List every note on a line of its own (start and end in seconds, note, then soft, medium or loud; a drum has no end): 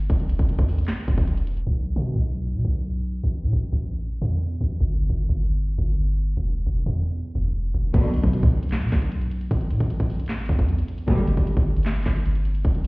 0.10 0.38 E1 loud
0.10 kick loud
0.10 closed hi-hat medium
0.20 closed hi-hat medium
0.29 closed hi-hat medium
0.39 0.58 E1 loud
0.39 kick medium
0.39 closed hi-hat medium
0.49 closed hi-hat medium
0.59 1.06 E2 loud
0.59 kick loud
0.59 closed hi-hat medium
0.69 open hi-hat medium
0.78 closed hi-hat medium
0.85 snare loud
0.85 clap loud
0.85 closed hi-hat medium
0.92 closed hi-hat soft
1.08 1.64 E1 loud
1.08 kick medium
1.08 closed hi-hat medium
1.18 kick loud
1.18 closed hi-hat medium
1.28 closed hi-hat medium
1.37 closed hi-hat medium
1.47 closed hi-hat medium
1.57 closed hi-hat soft
1.67 1.88 B1 loud
1.86 1.96 A1 loud
1.96 2.15 B2 loud
2.16 2.56 B1 loud
2.55 2.64 B2 loud
2.65 3.21 B1 loud
3.24 3.45 A1 loud
3.43 3.52 A2 loud
3.53 3.72 A1 loud
3.73 4.20 A1 loud
4.22 4.59 E2 loud
4.61 4.80 A1 loud
4.80 5.09 G1 loud
5.10 5.29 G1 loud
5.29 5.76 G1 loud
5.78 6.35 G1 loud
6.37 6.65 E1 loud
6.67 6.85 E1 loud
6.86 7.33 E2 loud
7.35 7.73 E1 loud
7.74 7.93 E1 loud
7.94 8.15 B1 loud
7.94 8.31 B2 loud
7.94 8.31 D3 loud
7.94 8.31 F#3 loud
7.94 kick loud
7.94 closed hi-hat medium
7.94 crash loud
8.04 closed hi-hat medium
8.14 8.23 A1 loud
8.14 closed hi-hat medium
8.24 8.42 B2 loud
8.24 kick loud
8.24 closed hi-hat medium
8.33 closed hi-hat medium
8.43 8.84 B1 loud
8.43 kick loud
8.43 closed hi-hat medium
8.63 closed hi-hat medium
8.69 snare loud
8.69 clap loud
8.69 closed hi-hat medium
8.76 closed hi-hat medium
8.82 8.92 B2 loud
8.82 closed hi-hat medium
8.89 9.49 B1 loud
8.89 kick medium
8.89 snare loud
8.89 clap medium
8.89 closed hi-hat medium
8.95 closed hi-hat medium
9.02 closed hi-hat medium
9.12 closed hi-hat medium
9.22 closed hi-hat medium
9.31 closed hi-hat medium
9.41 closed hi-hat medium
9.51 9.72 A1 loud
9.51 kick loud
9.51 closed hi-hat medium
9.61 closed hi-hat medium
9.71 9.80 A2 loud
9.71 closed hi-hat medium
9.80 9.99 A1 loud
9.80 kick medium
9.80 closed hi-hat medium
9.90 closed hi-hat medium
10.00 10.47 A1 loud
10.00 kick loud
10.00 closed hi-hat medium
10.10 open hi-hat medium
10.20 closed hi-hat medium
10.26 snare loud
10.26 clap loud
10.26 closed hi-hat medium
10.33 closed hi-hat medium
10.39 closed hi-hat medium
10.46 11.06 E2 loud
10.46 kick medium
10.46 closed hi-hat medium
10.52 closed hi-hat medium
10.59 kick medium
10.59 closed hi-hat medium
10.69 closed hi-hat medium
10.78 closed hi-hat medium
10.88 closed hi-hat medium
10.98 closed hi-hat medium
11.08 11.36 G1 loud
11.08 11.45 B2 loud
11.08 11.45 D3 loud
11.08 11.45 G3 loud
11.08 kick loud
11.08 closed hi-hat medium
11.18 closed hi-hat medium
11.27 closed hi-hat medium
11.37 11.56 G1 loud
11.37 kick medium
11.37 closed hi-hat medium
11.47 closed hi-hat medium
11.57 12.04 G1 loud
11.57 kick loud
11.57 closed hi-hat medium
11.76 closed hi-hat medium
11.83 snare loud
11.83 clap loud
11.83 closed hi-hat medium
11.89 closed hi-hat medium
11.96 closed hi-hat medium
12.03 12.62 G1 loud
12.03 kick medium
12.03 snare medium
12.03 clap medium
12.03 closed hi-hat medium
12.09 closed hi-hat medium
12.16 closed hi-hat medium
12.26 closed hi-hat medium
12.35 closed hi-hat medium
12.45 closed hi-hat medium
12.55 closed hi-hat medium
12.65 12.87 E1 loud
12.65 kick loud
12.65 closed hi-hat medium
12.75 closed hi-hat medium